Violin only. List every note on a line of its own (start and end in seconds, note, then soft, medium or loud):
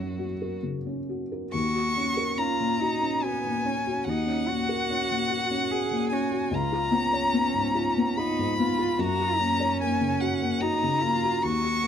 0.00 0.60 F#4 soft
1.53 2.39 C#6 loud
2.38 3.24 A#5 medium
3.22 4.05 G#5 medium
4.04 6.09 F#5 loud
6.09 6.55 G#5 medium
6.54 8.18 A#5 medium
8.17 9.01 B5 medium
9.00 9.80 A#5 loud
9.81 10.22 G#5 medium
10.20 10.62 F#5 medium
10.61 11.44 A#5 loud
11.42 11.87 C#6 loud